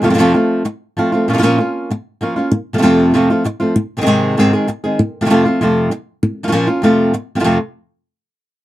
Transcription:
\new Staff \with { instrumentName = "Nylon-string guitar" } { \time 4/4 \tempo 4 = 195 <f, c f a c' f'>8 <f, c f a c' f'>8 <f a c' f'>4 r4 <f a c' f'>8 <f a c' f'>8 | <bes, f des' f'>8 <bes, f bes des' f'>8 <bes des' f'>4 r4 <f bes des' f'>8 <bes des' f'>8 | r4 <f, c f a c' f'>4 <f, c f a c' f'>8 <f a c' f'>8 r8 <f a c' f'>8 | r4 <aes, c ees aes c' aes'>4 <aes, c ees aes c' aes'>8 <ees aes c' aes'>8 r8 <ees aes c' aes'>8 |
r4 <f, c f a c' f'>8 <f a c' f'>8 <f, c f a c' f'>4 r4 | r4 <bes, f bes des' f'>8 <bes des' f'>8 <f, c f a c' f'>4 r4 | <f, c f a c' f'>8 r2. r8 | }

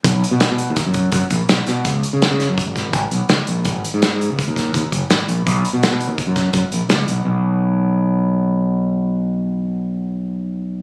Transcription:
<<
  \new Staff \with { instrumentName = "Fingered electric bass" } { \clef bass \time 5/4 \key b \major \tempo 4 = 166 b,,8 r16 b,8 b,8 dis,16 r16 fis,8. fis,16 r16 ais,,16 r16 b,,16 r16 b,8 | cis,8 r16 cis8 cis8 fis,16 r16 gis,,8. gis,,16 r16 b,,16 r16 cis,16 r16 ais,,8 | gis,,8 r16 gis,8 gis,8 cis,16 r16 dis,8. dis,16 r16 fis,,16 r16 gis,,16 r16 ais,,8 | b,,8 r16 b,8 b,8 dis,16 r16 fis,8. fis,16 r16 ais,,16 r16 cis,8 b,,8 |
b,,1~ b,,4~ | b,,1~ b,,4 | }
  \new DrumStaff \with { instrumentName = "Drums" } \drummode { \time 5/4 <hh bd>8 hh8 <hh sn>8 hh8 <hh bd sn>8 <hh bd>8 <hh bd>8 <hh bd>8 <hh sn>8 <hh sn>8 | <hh bd>8 hh8 <hh sn>8 <hh sn>8 <hh bd>8 <hh bd sn>8 <hh bd>8 hh8 <hh sn>8 hh8 | <hh bd>8 hh8 <hh sn>8 hh8 <hh bd>8 <hh bd sn>8 <hh bd>8 <hh bd>8 <hh sn>8 hh8 | <hh bd>8 hh8 <hh sn>8 hh8 <hh bd>8 <hh bd sn>8 <hh bd>8 hh8 <hh sn>8 hh8 |
r4 r4 r4 r4 r4 | r4 r4 r4 r4 r4 | }
>>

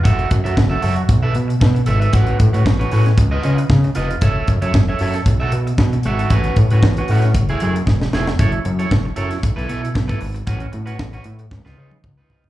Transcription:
<<
  \new Staff \with { instrumentName = "Clean electric guitar" } { \time 4/4 \key fis \dorian \tempo 4 = 115 <fis' a' e''>8 r16 <fis' a' e''>16 r16 <fis' a' e''>16 <fis' a' e''>16 r8 <a' b' e''>16 r4 <a' b' e''>16 <a' b' e''>16 | <cis' fis' b'>8 r16 <cis' fis' b'>16 r16 <cis' fis' b'>16 <cis' fis' b'>16 r8 <eis' b' dis''>16 <eis' b' dis''>16 r8. <eis' b' dis''>16 r16 | <a' cis'' e''>8 r16 <a' cis'' e''>16 r16 <a' cis'' e''>16 <a' cis'' e''>16 r8 <fis' a' e''>16 r4 <fis' a' e''>16 <fis' a' e''>16 | <cis' fis' b'>8 r16 <cis' fis' b'>16 r16 <cis' fis' b'>16 <cis' fis' b'>16 r8 <a e' gis'>16 <a e' gis'>16 r8. <a e' gis'>16 r16 |
<e' a' cis''>16 r8 <e' a' cis''>16 r8 <e' a' cis''>16 r8 <e' a' b'>16 <e' a' b'>16 r8 <e' a' b'>16 r8 | <cis' fis' b'>16 r8 <cis' fis' b'>16 r16 <cis' fis' b'>16 r8. <dis' eis' b'>16 <dis' eis' b'>16 r8 <dis' eis' b'>16 <dis' eis' b'>16 r16 | }
  \new Staff \with { instrumentName = "Analog synth bass" } { \clef bass \time 4/4 \key fis \dorian fis,,8 fis,16 fis,16 fis,,8 fis,8 b,,8 b,8 b,8 gis,,8 | a,,8 a,16 a,16 a,,8 a,8 cis,8 cis8 cis8 eis,,8 | fis,,8 fis,16 fis,16 fis,,8 fis,8 b,,8 b,8 b,8 gis,,8 | a,,8 a,16 a,16 a,,8 a,8 fis,,8 fis,8 e,,8 eis,,8 |
fis,,8 fis,8 fis,,8 fis,8 b,,16 b,,16 b,8 b,,8 gis,,8 | a,,8 a,8 a,,8 a,8 cis,16 cis,16 cis8 cis,8 bis,,8 | }
  \new DrumStaff \with { instrumentName = "Drums" } \drummode { \time 4/4 <hh bd>16 hh16 <hh bd>16 hh16 <bd sn>8 hho16 hh16 <hh bd>8 hh16 hh16 <bd sn>16 hh16 hh16 hh16 | <hh bd>16 hh16 <hh bd>16 hh16 <bd sn>16 hh16 hho16 <hh sn>16 <hh bd>8 hh16 hh16 <bd sn>16 hh16 hh16 hh16 | <hh bd>8 <hh bd>16 hh16 <bd sn>8 hho16 <hh sn>16 <hh bd>8 hh16 hh16 <bd sn>16 hh16 hh16 hh16 | <hh bd>16 hh16 <hh bd>16 hh16 <bd sn>16 hh16 hho16 <hh sn>16 <hh bd>16 hh16 hh16 hh16 <bd sn>16 sn16 sn16 sn16 |
<hh bd>16 hh16 hh16 hh16 <bd sn>8 hh16 <hh sn>16 <hh bd>16 hh16 hh16 hh16 <bd sn>16 <hh bd>16 hho16 hh16 | <hh bd>16 hh16 hh16 hh16 <bd sn>16 hh16 hh16 hh16 <bd sn>16 sn8 tommh16 <bd toml>8 tomfh16 tomfh16 | }
>>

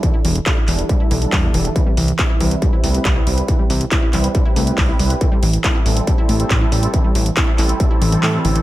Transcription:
<<
  \new Staff \with { instrumentName = "Supersaw synth" } { \time 4/4 \key c \lydian \tempo 4 = 139 <g d' e' a'>8 r8 <g d' e' a'>8 <g d' e' a'>8 <g d' e' a'>16 <g d' e' a'>8 <g d' e' a'>8 <g d' e' a'>16 <g d' e' a'>8 | <g c' e' b'>8 r8 <g c' e' b'>8 <g c' e' b'>8 <g c' e' b'>16 <g c' e' b'>8 <g c' e' b'>8 <g c' e' b'>16 <g c' e' b'>8 | <g c' e' b'>8 r8 <g c' e' b'>8 <g c' e' b'>8 <g c' e' b'>16 <g c' e' b'>8 <g c' e' b'>8 <g c' e' b'>16 <g c' e' b'>8 | <g c' e' a'>8 r8 <g c' e' a'>8 <g c' e' a'>8 <g c' e' a'>16 <g c' e' a'>8 <g c' e' a'>8 <g c' e' a'>16 <g c' e' a'>8 |
<g c' e' a'>8 r8 <g c' e' a'>8 <g c' e' a'>8 <g c' e' a'>16 <g c' e' a'>8 <g c' e' a'>8 <g c' e' a'>16 <g c' e' a'>8 | }
  \new Staff \with { instrumentName = "Synth pluck" } { \clef bass \time 4/4 \key c \lydian e16 e'16 e16 r16 e'16 e'16 e16 r16 g16 e'16 e16 r16 g16 b,16 e16 r16 | e16 g16 e16 r16 e'16 e'16 e16 r16 g16 e'16 a16 r16 g16 e'16 g16 r16 | e16 g16 e16 r16 e'16 e'16 e16 r16 g16 e'16 a16 r16 g16 e'16 g16 r16 | e16 g16 e16 r16 e'16 e'16 e16 r16 g16 e'16 a16 r16 g16 e'16 g16 r16 |
e16 g16 e16 r16 e'16 e'16 e16 r16 g16 e'16 e16 e16 e16 e16 d16 e16 | }
  \new Staff \with { instrumentName = "Analog synth bass" } { \clef bass \time 4/4 \key c \lydian r8 e,,8 r8 e,,8 r8 b,,8 e,8 e,,8 | r8 c,8 r8 c,8 r8 c,8 c,8 c,8 | r8 c,8 r8 c,8 r8 c,8 c,8 c,8 | r8 a,,8 r8 a,,8 r8 a,,8 a,,8 a,,8 |
r8 a,,8 r8 a,,8 r8 a,,8 a,8 a,,8 | }
  \new DrumStaff \with { instrumentName = "Drums" } \drummode { \time 4/4 <hh bd>8 hho16 hh16 <hc hh bd>8 <hc hho>16 hh16 <hh bd>8 hho16 hh16 <hc hho bd>8 hho16 hh16 | <hh bd>8 hho16 hh16 <hc hh bd>8 hho16 hh16 <hh bd>8 hho16 hh16 <hc hh bd>8 hho16 hh16 | <hh bd>8 hho16 hh16 <hc hh bd>8 <hc hho>16 hh16 <hh bd>8 hho16 hh16 <hc hho bd>8 hho16 hh16 | <hh bd>8 hho16 hh16 <hc hh bd>8 hho16 hh16 <hh bd>8 hho16 hh16 <hc hh bd>8 hho16 hh16 |
<hh bd>8 hho16 hh16 <hc hh bd>8 <hc hho>16 hh16 <hh bd>8 hho16 hh16 <hc hho>8 hho16 hh16 | }
>>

